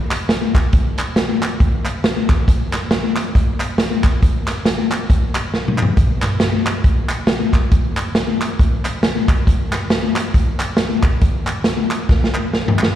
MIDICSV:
0, 0, Header, 1, 2, 480
1, 0, Start_track
1, 0, Tempo, 436681
1, 810, Time_signature, 4, 2, 24, 8
1, 14239, End_track
2, 0, Start_track
2, 0, Title_t, "Drums"
2, 121, Note_on_c, 9, 39, 95
2, 125, Note_on_c, 9, 42, 75
2, 231, Note_off_c, 9, 39, 0
2, 235, Note_off_c, 9, 42, 0
2, 319, Note_on_c, 9, 38, 103
2, 332, Note_on_c, 9, 42, 88
2, 428, Note_off_c, 9, 38, 0
2, 442, Note_off_c, 9, 42, 0
2, 599, Note_on_c, 9, 42, 72
2, 600, Note_on_c, 9, 36, 92
2, 602, Note_on_c, 9, 38, 34
2, 610, Note_on_c, 9, 39, 91
2, 709, Note_off_c, 9, 42, 0
2, 710, Note_off_c, 9, 36, 0
2, 712, Note_off_c, 9, 38, 0
2, 720, Note_off_c, 9, 39, 0
2, 799, Note_on_c, 9, 42, 85
2, 804, Note_on_c, 9, 36, 105
2, 909, Note_off_c, 9, 42, 0
2, 914, Note_off_c, 9, 36, 0
2, 1073, Note_on_c, 9, 42, 72
2, 1089, Note_on_c, 9, 39, 88
2, 1183, Note_off_c, 9, 42, 0
2, 1199, Note_off_c, 9, 39, 0
2, 1276, Note_on_c, 9, 38, 101
2, 1282, Note_on_c, 9, 42, 84
2, 1386, Note_off_c, 9, 38, 0
2, 1392, Note_off_c, 9, 42, 0
2, 1563, Note_on_c, 9, 42, 79
2, 1565, Note_on_c, 9, 39, 93
2, 1673, Note_off_c, 9, 42, 0
2, 1675, Note_off_c, 9, 39, 0
2, 1762, Note_on_c, 9, 36, 107
2, 1766, Note_on_c, 9, 42, 68
2, 1872, Note_off_c, 9, 36, 0
2, 1876, Note_off_c, 9, 42, 0
2, 2036, Note_on_c, 9, 39, 85
2, 2041, Note_on_c, 9, 42, 73
2, 2146, Note_off_c, 9, 39, 0
2, 2151, Note_off_c, 9, 42, 0
2, 2243, Note_on_c, 9, 38, 109
2, 2257, Note_on_c, 9, 42, 93
2, 2353, Note_off_c, 9, 38, 0
2, 2367, Note_off_c, 9, 42, 0
2, 2520, Note_on_c, 9, 36, 103
2, 2523, Note_on_c, 9, 39, 86
2, 2524, Note_on_c, 9, 42, 70
2, 2527, Note_on_c, 9, 38, 34
2, 2630, Note_off_c, 9, 36, 0
2, 2632, Note_off_c, 9, 39, 0
2, 2634, Note_off_c, 9, 42, 0
2, 2637, Note_off_c, 9, 38, 0
2, 2724, Note_on_c, 9, 36, 97
2, 2730, Note_on_c, 9, 42, 86
2, 2834, Note_off_c, 9, 36, 0
2, 2840, Note_off_c, 9, 42, 0
2, 2998, Note_on_c, 9, 42, 73
2, 3001, Note_on_c, 9, 39, 89
2, 3004, Note_on_c, 9, 38, 35
2, 3108, Note_off_c, 9, 42, 0
2, 3111, Note_off_c, 9, 39, 0
2, 3113, Note_off_c, 9, 38, 0
2, 3196, Note_on_c, 9, 38, 107
2, 3203, Note_on_c, 9, 42, 85
2, 3306, Note_off_c, 9, 38, 0
2, 3312, Note_off_c, 9, 42, 0
2, 3475, Note_on_c, 9, 39, 91
2, 3486, Note_on_c, 9, 42, 76
2, 3585, Note_off_c, 9, 39, 0
2, 3596, Note_off_c, 9, 42, 0
2, 3684, Note_on_c, 9, 36, 97
2, 3687, Note_on_c, 9, 42, 77
2, 3794, Note_off_c, 9, 36, 0
2, 3797, Note_off_c, 9, 42, 0
2, 3957, Note_on_c, 9, 39, 93
2, 3962, Note_on_c, 9, 42, 78
2, 4067, Note_off_c, 9, 39, 0
2, 4072, Note_off_c, 9, 42, 0
2, 4157, Note_on_c, 9, 38, 101
2, 4170, Note_on_c, 9, 42, 94
2, 4267, Note_off_c, 9, 38, 0
2, 4280, Note_off_c, 9, 42, 0
2, 4437, Note_on_c, 9, 42, 72
2, 4439, Note_on_c, 9, 36, 92
2, 4439, Note_on_c, 9, 39, 85
2, 4440, Note_on_c, 9, 38, 36
2, 4547, Note_off_c, 9, 42, 0
2, 4549, Note_off_c, 9, 36, 0
2, 4549, Note_off_c, 9, 39, 0
2, 4550, Note_off_c, 9, 38, 0
2, 4645, Note_on_c, 9, 36, 101
2, 4645, Note_on_c, 9, 42, 87
2, 4754, Note_off_c, 9, 42, 0
2, 4755, Note_off_c, 9, 36, 0
2, 4914, Note_on_c, 9, 42, 73
2, 4917, Note_on_c, 9, 39, 87
2, 4919, Note_on_c, 9, 38, 35
2, 5024, Note_off_c, 9, 42, 0
2, 5027, Note_off_c, 9, 39, 0
2, 5029, Note_off_c, 9, 38, 0
2, 5116, Note_on_c, 9, 38, 102
2, 5122, Note_on_c, 9, 42, 93
2, 5226, Note_off_c, 9, 38, 0
2, 5232, Note_off_c, 9, 42, 0
2, 5399, Note_on_c, 9, 42, 85
2, 5401, Note_on_c, 9, 39, 90
2, 5508, Note_off_c, 9, 42, 0
2, 5511, Note_off_c, 9, 39, 0
2, 5603, Note_on_c, 9, 36, 95
2, 5606, Note_on_c, 9, 42, 80
2, 5713, Note_off_c, 9, 36, 0
2, 5716, Note_off_c, 9, 42, 0
2, 5877, Note_on_c, 9, 42, 77
2, 5880, Note_on_c, 9, 39, 92
2, 5987, Note_off_c, 9, 42, 0
2, 5990, Note_off_c, 9, 39, 0
2, 6085, Note_on_c, 9, 38, 55
2, 6195, Note_off_c, 9, 38, 0
2, 6243, Note_on_c, 9, 45, 73
2, 6353, Note_off_c, 9, 45, 0
2, 6353, Note_on_c, 9, 39, 94
2, 6400, Note_on_c, 9, 43, 98
2, 6463, Note_off_c, 9, 39, 0
2, 6510, Note_off_c, 9, 43, 0
2, 6563, Note_on_c, 9, 36, 103
2, 6563, Note_on_c, 9, 42, 86
2, 6672, Note_off_c, 9, 42, 0
2, 6673, Note_off_c, 9, 36, 0
2, 6836, Note_on_c, 9, 42, 73
2, 6837, Note_on_c, 9, 39, 89
2, 6841, Note_on_c, 9, 38, 34
2, 6946, Note_off_c, 9, 42, 0
2, 6947, Note_off_c, 9, 39, 0
2, 6951, Note_off_c, 9, 38, 0
2, 7033, Note_on_c, 9, 38, 104
2, 7040, Note_on_c, 9, 42, 86
2, 7143, Note_off_c, 9, 38, 0
2, 7149, Note_off_c, 9, 42, 0
2, 7325, Note_on_c, 9, 39, 91
2, 7329, Note_on_c, 9, 42, 77
2, 7434, Note_off_c, 9, 39, 0
2, 7439, Note_off_c, 9, 42, 0
2, 7522, Note_on_c, 9, 36, 104
2, 7527, Note_on_c, 9, 42, 73
2, 7632, Note_off_c, 9, 36, 0
2, 7637, Note_off_c, 9, 42, 0
2, 7794, Note_on_c, 9, 39, 86
2, 7798, Note_on_c, 9, 42, 73
2, 7904, Note_off_c, 9, 39, 0
2, 7908, Note_off_c, 9, 42, 0
2, 7992, Note_on_c, 9, 38, 112
2, 8005, Note_on_c, 9, 42, 88
2, 8102, Note_off_c, 9, 38, 0
2, 8115, Note_off_c, 9, 42, 0
2, 8277, Note_on_c, 9, 36, 91
2, 8280, Note_on_c, 9, 42, 73
2, 8284, Note_on_c, 9, 38, 34
2, 8288, Note_on_c, 9, 39, 87
2, 8387, Note_off_c, 9, 36, 0
2, 8390, Note_off_c, 9, 42, 0
2, 8393, Note_off_c, 9, 38, 0
2, 8398, Note_off_c, 9, 39, 0
2, 8481, Note_on_c, 9, 42, 86
2, 8483, Note_on_c, 9, 36, 99
2, 8591, Note_off_c, 9, 42, 0
2, 8593, Note_off_c, 9, 36, 0
2, 8759, Note_on_c, 9, 39, 89
2, 8760, Note_on_c, 9, 42, 70
2, 8869, Note_off_c, 9, 39, 0
2, 8870, Note_off_c, 9, 42, 0
2, 8958, Note_on_c, 9, 38, 105
2, 8964, Note_on_c, 9, 42, 86
2, 9068, Note_off_c, 9, 38, 0
2, 9074, Note_off_c, 9, 42, 0
2, 9248, Note_on_c, 9, 39, 86
2, 9252, Note_on_c, 9, 42, 84
2, 9358, Note_off_c, 9, 39, 0
2, 9362, Note_off_c, 9, 42, 0
2, 9447, Note_on_c, 9, 36, 102
2, 9456, Note_on_c, 9, 42, 74
2, 9557, Note_off_c, 9, 36, 0
2, 9566, Note_off_c, 9, 42, 0
2, 9726, Note_on_c, 9, 39, 87
2, 9726, Note_on_c, 9, 42, 79
2, 9836, Note_off_c, 9, 39, 0
2, 9836, Note_off_c, 9, 42, 0
2, 9925, Note_on_c, 9, 38, 108
2, 9939, Note_on_c, 9, 42, 91
2, 10035, Note_off_c, 9, 38, 0
2, 10049, Note_off_c, 9, 42, 0
2, 10202, Note_on_c, 9, 42, 76
2, 10204, Note_on_c, 9, 36, 97
2, 10211, Note_on_c, 9, 39, 86
2, 10312, Note_off_c, 9, 42, 0
2, 10314, Note_off_c, 9, 36, 0
2, 10321, Note_off_c, 9, 39, 0
2, 10411, Note_on_c, 9, 36, 92
2, 10414, Note_on_c, 9, 42, 90
2, 10521, Note_off_c, 9, 36, 0
2, 10524, Note_off_c, 9, 42, 0
2, 10683, Note_on_c, 9, 42, 70
2, 10689, Note_on_c, 9, 38, 34
2, 10689, Note_on_c, 9, 39, 88
2, 10793, Note_off_c, 9, 42, 0
2, 10799, Note_off_c, 9, 38, 0
2, 10799, Note_off_c, 9, 39, 0
2, 10885, Note_on_c, 9, 38, 109
2, 10891, Note_on_c, 9, 42, 90
2, 10995, Note_off_c, 9, 38, 0
2, 11001, Note_off_c, 9, 42, 0
2, 11166, Note_on_c, 9, 39, 86
2, 11179, Note_on_c, 9, 42, 83
2, 11276, Note_off_c, 9, 39, 0
2, 11289, Note_off_c, 9, 42, 0
2, 11369, Note_on_c, 9, 36, 102
2, 11375, Note_on_c, 9, 42, 77
2, 11479, Note_off_c, 9, 36, 0
2, 11485, Note_off_c, 9, 42, 0
2, 11646, Note_on_c, 9, 42, 78
2, 11647, Note_on_c, 9, 39, 93
2, 11756, Note_off_c, 9, 42, 0
2, 11757, Note_off_c, 9, 39, 0
2, 11835, Note_on_c, 9, 38, 106
2, 11849, Note_on_c, 9, 42, 91
2, 11945, Note_off_c, 9, 38, 0
2, 11959, Note_off_c, 9, 42, 0
2, 12122, Note_on_c, 9, 42, 68
2, 12123, Note_on_c, 9, 36, 100
2, 12125, Note_on_c, 9, 38, 34
2, 12126, Note_on_c, 9, 39, 91
2, 12232, Note_off_c, 9, 42, 0
2, 12233, Note_off_c, 9, 36, 0
2, 12235, Note_off_c, 9, 38, 0
2, 12236, Note_off_c, 9, 39, 0
2, 12327, Note_on_c, 9, 42, 87
2, 12330, Note_on_c, 9, 36, 101
2, 12436, Note_off_c, 9, 42, 0
2, 12440, Note_off_c, 9, 36, 0
2, 12600, Note_on_c, 9, 42, 71
2, 12605, Note_on_c, 9, 39, 91
2, 12710, Note_off_c, 9, 42, 0
2, 12715, Note_off_c, 9, 39, 0
2, 12797, Note_on_c, 9, 38, 103
2, 12803, Note_on_c, 9, 42, 88
2, 12907, Note_off_c, 9, 38, 0
2, 12913, Note_off_c, 9, 42, 0
2, 13087, Note_on_c, 9, 39, 93
2, 13095, Note_on_c, 9, 42, 82
2, 13197, Note_off_c, 9, 39, 0
2, 13205, Note_off_c, 9, 42, 0
2, 13292, Note_on_c, 9, 36, 105
2, 13294, Note_on_c, 9, 38, 57
2, 13401, Note_off_c, 9, 36, 0
2, 13404, Note_off_c, 9, 38, 0
2, 13454, Note_on_c, 9, 38, 63
2, 13564, Note_off_c, 9, 38, 0
2, 13568, Note_on_c, 9, 39, 90
2, 13678, Note_off_c, 9, 39, 0
2, 13778, Note_on_c, 9, 38, 75
2, 13888, Note_off_c, 9, 38, 0
2, 13939, Note_on_c, 9, 43, 96
2, 14049, Note_off_c, 9, 43, 0
2, 14056, Note_on_c, 9, 39, 88
2, 14101, Note_on_c, 9, 38, 94
2, 14166, Note_off_c, 9, 39, 0
2, 14211, Note_off_c, 9, 38, 0
2, 14239, End_track
0, 0, End_of_file